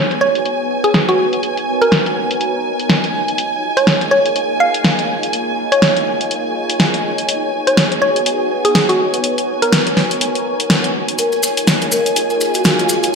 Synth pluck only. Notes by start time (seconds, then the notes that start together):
0.21 C#5
0.84 G#4
0.94 G#4
1.09 F#4
1.82 A#4
1.92 A#4
3.77 C#5
4.11 C#5
4.60 F5
5.72 C#5
5.82 C#5
7.67 C#5
8.02 C#5
8.65 G#4
8.75 G#4
8.89 F#4
9.62 A#4
9.72 A#4